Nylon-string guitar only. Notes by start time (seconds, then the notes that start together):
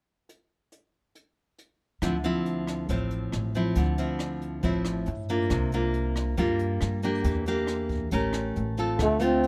2.02 D3 F3 C4 E4
2.24 F3 C4 E4
2.90 A2 F3 C4 E4
3.55 F3 C4 E4
3.77 D3
3.98 F3 C4 E4
4.63 A2 F3 C4 E4
5.30 A#3 D4 F4
5.52 C3
5.74 A#3 D4 F4
6.37 G3 A#3 D4 F4
7.03 A#3 D4 G4
7.25 E3
7.48 A#3 D4 G4
8.12 A3 C#4 G4 A#4
8.78 C4 F4 A4
9.00 D3
9.20 A3 C4 F4